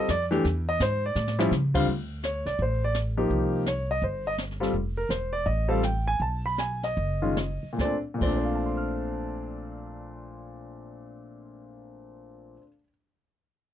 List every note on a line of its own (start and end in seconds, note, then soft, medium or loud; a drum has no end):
0.08 0.43 F2 medium
0.08 0.23 D5 medium
0.08 kick soft
0.08 snare medium
0.08 hi-hat pedal medium
0.31 0.43 E3 medium
0.31 0.43 A3 medium
0.31 0.43 D4 medium
0.31 0.43 G4 medium
0.31 snare soft
0.44 0.79 E2 loud
0.44 brush sweep soft
0.44 kick soft
0.44 snare soft
0.69 0.80 D#5 medium
0.80 1.15 G#2 medium
0.80 1.03 C5 medium
0.80 kick soft
0.80 snare medium
0.80 hi-hat pedal medium
1.06 1.38 D5 medium
1.16 1.50 A2 loud
1.16 snare medium
1.27 snare medium
1.39 1.50 F3 medium
1.39 1.50 G3 medium
1.39 1.50 C#4 medium
1.39 1.50 E4 medium
1.39 snare loud
1.51 1.86 C#3 medium
1.51 snare medium
1.51 hi-hat pedal medium
1.74 1.86 D3 medium
1.74 1.86 G3 medium
1.74 1.86 C4 medium
1.74 1.86 F4 medium
1.74 kick medium
1.74 crash medium
1.87 2.42 D2 medium
1.87 brush sweep soft
1.87 kick soft
2.23 2.46 C#5 medium
2.23 snare medium
2.23 hi-hat pedal medium
2.46 2.58 C2 medium
2.46 2.58 D5 medium
2.46 snare soft
2.59 3.27 A1 medium
2.59 2.83 C5 medium
2.59 brush sweep soft
2.59 kick soft
2.84 2.95 D5 medium
2.94 snare medium
2.94 hi-hat pedal medium
3.17 3.63 F3 medium
3.17 3.63 A#3 medium
3.17 3.63 D#4 medium
3.17 3.63 G4 medium
3.30 3.98 C2 medium
3.30 brush sweep soft
3.30 kick soft
3.66 3.89 C#5 medium
3.66 snare medium
3.66 hi-hat pedal medium
3.91 4.02 D#5 medium
4.02 4.70 G1 medium
4.02 4.25 C5 soft
4.02 brush sweep soft
4.02 kick soft
4.27 4.34 D#5 medium
4.38 snare medium
4.38 hi-hat pedal medium
4.51 snare soft
4.60 4.72 G3 medium
4.60 4.72 C4 soft
4.60 4.72 F4 medium
4.60 4.72 A4 medium
4.60 snare soft
4.74 5.07 F1 medium
4.74 brush sweep soft
4.74 kick soft
4.97 5.09 A#4 medium
5.09 5.43 E1 medium
5.09 5.32 C5 medium
5.09 snare medium
5.09 hi-hat pedal medium
5.33 5.45 D5 medium
5.46 6.16 A1 medium
5.46 5.68 D#5 medium
5.46 brush sweep soft
5.46 kick soft
5.68 5.80 G3 medium
5.68 5.81 C4 medium
5.68 5.81 F4 medium
5.68 5.81 A4 medium
5.68 5.82 F5 medium
5.83 6.06 G5 medium
5.83 snare medium
5.83 hi-hat pedal medium
6.08 6.20 G#5 medium
6.20 6.93 B1 medium
6.20 6.44 A5 medium
6.20 brush sweep soft
6.20 kick soft
6.46 6.58 B5 medium
6.58 6.83 G#5 medium
6.58 snare medium
6.58 hi-hat pedal medium
6.83 7.67 D#5 medium
6.83 snare soft
6.97 7.59 F#1 medium
6.97 brush sweep soft
6.97 kick soft
7.22 7.35 D#3 medium
7.22 7.35 G#3 medium
7.22 7.35 C#4 soft
7.22 7.35 F4 medium
7.37 snare medium
7.37 hi-hat pedal soft
7.63 muted upright bass stroke soft
7.73 7.92 A#2 medium
7.73 7.94 A3 soft
7.79 7.93 A#1 medium
7.79 7.95 C4 soft
7.79 7.94 D5 medium
7.79 kick soft
7.79 snare soft
7.84 7.97 D4 medium
8.14 12.54 A#2 medium
8.18 12.57 A#1 medium
8.18 12.58 A3 soft
8.18 12.62 C4 medium
8.18 12.56 F4 soft
8.18 12.58 D5 medium
8.18 kick medium
8.18 crash medium
8.26 12.66 D4 medium
8.26 12.64 A4 soft
8.36 12.69 C5 soft
8.45 12.73 F5 soft
8.55 12.79 A5 soft
8.66 12.84 C6 soft
8.77 12.90 F6 soft